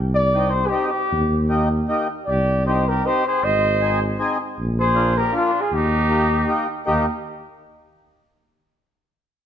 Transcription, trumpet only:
2.29 2.64 G4 medium
2.66 2.88 G4 medium
2.88 3.06 G4 medium
3.06 3.26 G4 medium
3.28 3.45 G#4 medium
3.43 4.02 C5 loud
4.80 5.22 G#4 medium
5.20 5.35 G4 medium
5.37 5.63 D4 medium
5.62 5.76 F4 medium
5.75 6.71 D#4 medium
6.86 7.06 D#4 medium

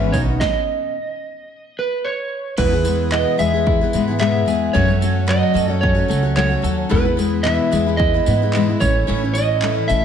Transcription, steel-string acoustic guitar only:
0.00 0.14 E2 medium
0.00 0.14 E3 medium
0.00 0.14 G#3 medium
0.00 0.13 B3 medium
0.00 0.14 C#4 medium
0.00 0.15 B4 medium
0.14 0.41 B3 medium
0.14 0.41 D#4 medium
0.14 0.42 F#4 medium
0.14 0.42 C#5 medium
2.58 2.73 E2 medium
2.58 2.73 B2 medium
2.58 2.73 E3 medium
2.58 2.73 G#3 medium
2.58 2.73 B3 medium
2.58 2.72 G#4 medium
2.73 2.83 E3 soft
2.73 2.85 G#3 soft
2.73 2.86 B3 soft
2.73 2.85 G#4 medium
2.84 3.11 E3 medium
2.84 3.11 G#3 medium
2.84 3.12 B3 medium
2.84 3.11 G#4 medium
3.11 3.39 E2 medium
3.11 3.39 B2 medium
3.11 3.37 E3 medium
3.11 3.37 G#3 medium
3.11 3.39 B3 medium
3.11 3.39 G#4 medium
3.38 3.53 E3 medium
3.38 3.54 G#3 medium
3.38 3.54 B3 medium
3.38 3.52 G#4 medium
3.54 3.82 E3 soft
3.54 3.82 G#3 soft
3.54 3.81 B3 medium
3.54 3.80 G#4 medium
3.81 3.93 E3 soft
3.81 3.94 G#3 soft
3.81 3.94 B3 medium
3.81 3.93 G#4 medium
3.94 4.08 E3 medium
3.94 4.09 G#3 medium
3.94 4.08 B3 medium
3.94 4.06 G#4 medium
4.08 4.19 E3 soft
4.08 4.19 G#3 soft
4.08 4.20 B3 medium
4.08 4.20 G#4 medium
4.19 4.47 E2 medium
4.19 4.47 B2 medium
4.19 4.45 E3 medium
4.19 4.46 G#3 medium
4.19 4.47 B3 medium
4.19 4.48 G#4 medium
4.46 4.74 E3 medium
4.46 4.74 G#3 medium
4.46 4.75 B3 medium
4.46 4.75 G#4 medium
4.74 4.89 F#2 medium
4.74 4.90 C#3 medium
4.74 4.90 F#3 medium
4.74 4.89 A3 medium
4.74 4.88 C#4 medium
4.74 4.87 F#4 medium
4.88 5.00 F#3 soft
4.88 5.01 A3 soft
4.88 5.02 C#4 medium
4.88 5.01 F#4 medium
5.01 5.26 F#3 medium
5.01 5.27 A3 medium
5.01 5.27 C#4 medium
5.01 5.28 F#4 medium
5.27 5.55 F#2 medium
5.27 5.55 C#3 medium
5.27 5.52 F#3 medium
5.27 5.53 A3 medium
5.27 5.54 C#4 medium
5.27 5.55 F#4 medium
5.54 5.70 F#3 medium
5.54 5.69 A3 medium
5.54 5.68 C#4 medium
5.54 5.66 F#4 medium
5.68 5.97 F#3 medium
5.68 5.96 A3 medium
5.68 5.95 C#4 medium
5.68 5.94 F#4 medium
5.95 6.07 F#3 soft
5.95 6.08 A3 medium
5.95 6.09 C#4 medium
5.95 6.09 F#4 medium
6.08 6.24 F#3 medium
6.08 6.23 A3 medium
6.08 6.23 C#4 medium
6.08 6.21 F#4 medium
6.23 6.35 F#3 soft
6.23 6.36 A3 medium
6.23 6.36 C#4 medium
6.23 6.36 F#4 medium
6.36 6.51 F#2 medium
6.36 6.52 C#3 medium
6.36 6.52 F#3 medium
6.36 6.51 A3 medium
6.36 6.49 C#4 medium
6.36 6.49 F#4 loud
6.50 6.61 F#3 soft
6.50 6.61 A3 soft
6.50 6.63 C#4 soft
6.50 6.63 F#4 medium
6.62 6.89 F#3 medium
6.62 6.90 A3 medium
6.62 6.90 C#4 medium
6.62 6.91 F#4 medium
6.89 7.05 E2 medium
6.89 7.05 B2 medium
6.89 7.05 E3 medium
6.89 7.06 G#3 medium
6.89 7.05 B3 medium
6.89 7.04 E4 loud
7.05 7.16 E3 soft
7.05 7.17 G#3 soft
7.05 7.18 B3 medium
7.05 7.18 E4 medium
7.17 7.44 E3 medium
7.17 7.44 G#3 medium
7.17 7.44 B3 medium
7.17 7.44 E4 medium
7.43 7.72 E2 medium
7.43 7.72 B2 medium
7.43 7.70 E3 medium
7.43 7.72 G#3 medium
7.43 7.72 B3 medium
7.43 7.73 E4 medium
7.71 7.87 E3 medium
7.71 7.87 G#3 medium
7.71 7.87 B3 medium
7.71 7.85 E4 medium
7.86 8.15 E3 soft
7.86 8.15 G#3 medium
7.86 8.14 B3 medium
7.86 8.13 E4 medium
8.14 8.25 E3 soft
8.14 8.26 G#3 medium
8.14 8.27 B3 medium
8.14 8.27 E4 medium
8.26 8.42 E3 medium
8.26 8.42 G#3 medium
8.26 8.42 B3 medium
8.26 8.41 E4 medium
8.42 8.55 E3 soft
8.42 8.55 G#3 medium
8.42 8.55 B3 medium
8.42 8.54 E4 medium
8.55 8.70 E2 medium
8.55 8.70 B2 medium
8.55 8.70 E3 medium
8.55 8.69 G#3 medium
8.55 8.68 B3 loud
8.55 8.67 E4 medium
8.68 8.79 E3 soft
8.68 8.81 G#3 soft
8.68 8.81 B3 medium
8.68 8.81 E4 medium
8.80 9.07 E3 medium
8.80 9.07 A3 medium
8.80 9.08 C#4 medium
8.80 9.08 E4 medium
9.07 9.23 A2 medium
9.07 9.23 E3 medium
9.07 9.23 A3 medium
9.07 9.23 C#4 medium
9.07 9.21 E4 loud
9.23 9.35 A3 soft
9.23 9.35 C#4 medium
9.23 9.35 E4 medium
9.34 9.61 E3 medium
9.34 9.62 A3 medium
9.34 9.63 C#4 medium
9.34 9.63 E4 medium
9.62 9.90 A2 medium
9.62 9.87 E3 medium
9.62 9.88 A3 medium
9.62 9.89 C#4 medium
9.62 9.90 E4 medium
9.88 10.04 E3 medium
9.88 10.04 A3 medium
9.88 10.04 C#4 medium
9.88 10.03 E4 medium

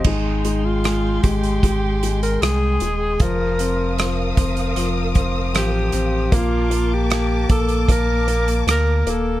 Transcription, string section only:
0.06 3.18 G#3 medium
0.06 3.18 G5 medium
0.06 3.18 C6 medium
3.20 6.30 A#4 medium
3.20 6.30 F5 medium
3.20 6.30 D#6 medium
6.32 9.40 A#3 medium
6.32 9.40 A5 medium
6.32 9.40 D6 medium

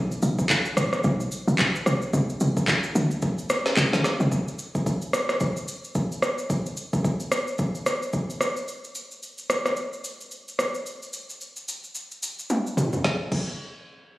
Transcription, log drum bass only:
0.00 0.20 B1 loud
0.23 0.73 B1 loud
0.77 1.02 A1 medium
1.04 1.44 B1 loud
1.48 1.83 B1 loud
1.86 2.11 C2 loud
2.13 2.39 C2 loud
2.41 2.91 C2 loud
2.95 3.51 D2 medium
3.50 3.75 C2 medium
3.77 3.92 C2 medium
3.93 4.03 D2 medium
4.20 4.31 C2 medium

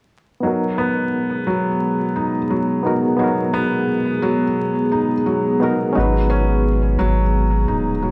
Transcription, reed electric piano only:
0.40 2.80 B3 medium
0.40 2.81 D#4 medium
0.45 2.82 F#4 medium
0.45 2.83 A#4 medium
2.83 3.00 B3 medium
2.83 3.01 D#4 medium
2.83 3.01 F#4 medium
2.83 3.02 A#4 medium
3.17 5.56 B3 medium
3.17 5.57 D#4 medium
3.21 5.58 F#4 medium
3.21 5.59 A#4 medium
5.60 5.91 B3 medium
5.60 5.92 D#4 medium
5.60 5.92 F#4 medium
5.60 5.93 A#4 medium
5.93 8.11 C#4 medium
5.93 8.11 D#4 medium
5.97 8.11 F#4 medium
5.97 8.11 B4 medium

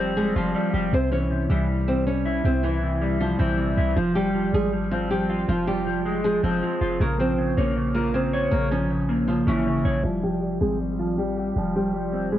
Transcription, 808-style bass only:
0.00 0.32 F1 loud
0.36 0.54 F1 loud
0.74 0.92 F1 loud
0.93 1.47 C2 loud
1.50 2.41 C2 loud
2.44 3.36 C2 loud
3.40 3.76 A#1 loud
3.77 3.96 C2 loud
3.97 4.51 F1 loud
4.53 5.45 G#1 loud
5.48 6.40 F1 loud
6.43 6.62 F1 loud
6.81 6.99 F1 loud
7.00 7.55 A#1 loud
7.57 8.48 A#1 loud
8.52 9.43 A#1 loud
9.47 9.84 G#1 loud
9.85 10.03 A#1 loud
10.04 10.59 F1 loud
10.61 11.52 G#1 loud
11.56 12.39 F1 loud

